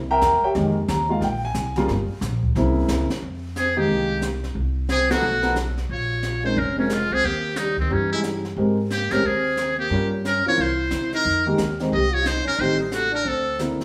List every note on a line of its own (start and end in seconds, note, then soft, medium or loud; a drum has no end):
0.00 0.21 C2 medium
0.11 0.42 A#4 loud
0.11 0.41 E5 loud
0.11 0.41 G5 loud
0.11 0.41 A#5 loud
0.21 0.41 E2 medium
0.21 snare medium
0.21 hi-hat pedal medium
0.43 0.52 G4 medium
0.43 0.51 C#5 medium
0.43 0.52 E5 medium
0.43 0.51 G5 loud
0.43 muted upright bass stroke soft
0.55 0.88 F2 medium
0.55 0.74 D#3 medium
0.55 0.74 G#3 medium
0.55 0.75 A#3 medium
0.55 0.74 G4 medium
0.55 brush sweep medium
0.55 snare soft
0.88 1.20 D#2 loud
0.88 1.10 A#5 medium
0.88 snare medium
0.88 hi-hat pedal medium
1.09 1.21 D#3 medium
1.09 1.21 G#3 medium
1.09 1.21 A#3 medium
1.09 1.21 F4 medium
1.09 1.22 F5 loud
1.21 1.54 A#1 medium
1.21 1.43 G5 loud
1.21 brush sweep medium
1.21 snare soft
1.45 1.75 G#5 loud
1.54 1.87 C2 medium
1.54 snare medium
1.54 hi-hat pedal medium
1.76 1.88 C#3 medium
1.76 1.88 G3 medium
1.76 1.88 A#3 medium
1.76 1.88 F4 loud
1.76 snare soft
1.88 2.08 G1 medium
1.88 brush sweep soft
1.88 snare medium
2.09 muted upright bass stroke soft
2.21 2.54 A#1 loud
2.21 snare medium
2.21 hi-hat pedal medium
2.43 kick medium
2.55 2.88 C2 medium
2.55 3.06 C#3 medium
2.55 3.06 A#3 medium
2.55 3.06 C4 medium
2.55 3.06 E4 medium
2.55 brush sweep medium
2.55 snare soft
2.88 3.08 C#2 medium
2.88 snare medium
2.88 hi-hat pedal medium
3.10 muted upright bass stroke soft
3.10 snare medium
3.22 3.86 F2 medium
3.22 brush sweep soft
3.56 3.79 C4 medium
3.56 3.80 G#4 medium
3.56 snare soft
3.56 hi-hat pedal medium
3.76 4.20 D#3 medium
3.76 4.20 G#3 medium
3.76 4.20 A#3 medium
3.76 4.23 A#3 medium
3.76 4.20 G4 medium
3.76 4.23 G4 medium
3.89 4.52 C2 medium
3.89 brush sweep soft
4.22 snare medium
4.22 hi-hat pedal medium
4.44 snare soft
4.55 5.19 C2 medium
4.55 brush sweep soft
4.89 5.12 C4 medium
4.89 5.12 G#4 medium
4.89 snare medium
4.89 hi-hat pedal soft
5.10 5.21 F3 medium
5.10 5.56 A3 medium
5.10 5.21 B3 medium
5.10 5.22 D#4 medium
5.10 5.56 F#4 medium
5.10 5.21 A4 medium
5.10 snare medium
5.10 ride medium
5.22 5.86 B1 medium
5.22 brush sweep soft
5.42 5.54 F3 medium
5.42 5.54 B3 medium
5.42 5.54 D#4 medium
5.42 5.54 A4 medium
5.42 snare soft
5.56 snare medium
5.56 hi-hat pedal medium
5.78 snare soft
5.89 6.53 A#1 medium
5.89 6.41 F4 medium
5.89 6.41 C#5 medium
5.89 brush sweep medium
6.23 snare medium
6.23 hi-hat pedal soft
6.43 6.54 G#3 medium
6.43 6.55 C4 medium
6.43 6.55 C#4 medium
6.43 6.60 D#4 medium
6.43 6.55 A#4 medium
6.43 6.60 C5 medium
6.56 7.07 F1 medium
6.56 6.78 C#4 medium
6.56 6.78 A#4 medium
6.56 brush sweep soft
6.77 6.92 F3 medium
6.77 6.88 G#3 medium
6.77 6.88 C4 medium
6.77 6.88 C#4 medium
6.77 6.95 C#4 medium
6.77 6.89 A#4 medium
6.90 7.14 G#3 medium
6.90 7.15 F4 medium
6.90 snare medium
6.90 hi-hat pedal medium
7.10 7.22 C#2 medium
7.10 7.27 C4 medium
7.10 7.27 G#4 loud
7.23 7.87 D#2 medium
7.23 7.61 A#3 medium
7.23 7.59 G4 medium
7.23 brush sweep soft
7.56 7.78 G3 medium
7.56 7.78 D#4 medium
7.56 snare soft
7.56 hi-hat pedal medium
7.77 7.93 D#3 medium
7.77 7.94 C4 medium
7.77 kick medium
7.90 8.54 G2 medium
7.90 8.40 E3 medium
7.90 8.12 E3 medium
7.90 8.40 C#4 soft
7.90 8.12 C#4 medium
7.90 8.40 D#4 soft
7.90 8.41 G4 medium
7.90 brush sweep soft
8.13 8.24 G#3 medium
8.13 8.19 E4 medium
8.23 snare medium
8.23 hi-hat pedal medium
8.45 snare soft
8.56 9.07 G#2 medium
8.56 8.76 G#3 medium
8.56 8.76 C4 medium
8.56 8.76 G4 medium
8.56 8.76 A#4 medium
8.56 brush sweep soft
8.90 9.14 A#3 medium
8.90 9.13 G4 medium
8.90 snare medium
8.90 hi-hat pedal medium
9.11 9.23 A2 medium
9.11 9.22 G#3 medium
9.11 9.22 C4 medium
9.11 9.25 C#4 medium
9.11 9.23 G4 medium
9.11 9.28 A#4 medium
9.11 9.23 A#4 medium
9.11 snare medium
9.23 9.87 D#2 medium
9.23 9.77 C4 medium
9.23 9.78 G#4 medium
9.23 brush sweep soft
9.57 snare medium
9.57 hi-hat pedal medium
9.77 10.09 A#3 medium
9.77 10.10 G4 medium
9.90 10.41 G2 medium
9.90 10.10 G3 medium
9.90 10.10 C#4 medium
9.90 10.11 F4 medium
9.90 10.11 A#4 medium
9.90 brush sweep soft
10.25 10.44 C#4 medium
10.25 10.45 A#4 medium
10.25 snare medium
10.25 hi-hat pedal medium
10.46 10.57 E3 medium
10.46 10.57 C4 medium
10.46 10.57 C#4 medium
10.46 10.61 F4 medium
10.46 10.57 A#4 medium
10.46 10.63 C#5 medium
10.46 muted upright bass stroke soft
10.58 10.89 C2 medium
10.58 11.12 E4 medium
10.58 11.14 C5 medium
10.58 brush sweep soft
10.91 11.23 C3 medium
10.91 snare medium
10.91 hi-hat pedal medium
11.13 11.44 D#4 medium
11.13 11.45 A#4 medium
11.13 snare soft
11.25 11.56 F2 medium
11.25 brush sweep soft
11.46 11.57 D#3 medium
11.46 11.57 G#3 medium
11.46 11.57 A#3 medium
11.46 11.57 G4 medium
11.58 11.89 D#2 medium
11.58 snare medium
11.58 hi-hat pedal medium
11.80 11.91 D#3 medium
11.80 11.91 G#3 medium
11.80 11.91 A#3 medium
11.80 11.91 C4 medium
11.80 snare soft
11.92 12.43 C2 medium
11.92 12.13 G4 medium
11.92 12.15 D#5 medium
11.92 brush sweep soft
12.11 12.26 F4 medium
12.11 12.28 C#5 medium
12.24 12.44 D#4 medium
12.24 12.47 C5 medium
12.24 snare medium
12.24 hi-hat pedal medium
12.44 12.60 C#4 medium
12.44 12.62 A#4 medium
12.44 muted upright bass stroke soft
12.58 13.22 A1 medium
12.58 12.78 D#3 medium
12.58 12.79 A3 medium
12.58 12.78 C4 medium
12.58 12.77 D#4 medium
12.58 12.79 G4 medium
12.58 12.80 C5 medium
12.58 brush sweep soft
12.77 12.93 G3 soft
12.77 12.95 D#4 soft
12.91 13.11 A3 medium
12.91 13.14 F#4 medium
12.91 snare medium
12.91 hi-hat pedal medium
13.11 13.29 D4 medium
13.11 13.30 A#4 medium
13.25 13.76 D2 medium
13.25 13.60 C4 medium
13.25 13.60 A4 medium
13.25 brush sweep soft
13.59 13.78 D3 medium
13.59 13.78 A#3 medium
13.59 13.79 C4 medium
13.59 13.79 E4 medium
13.59 snare medium
13.59 hi-hat pedal medium
13.80 muted upright bass stroke soft
13.80 snare soft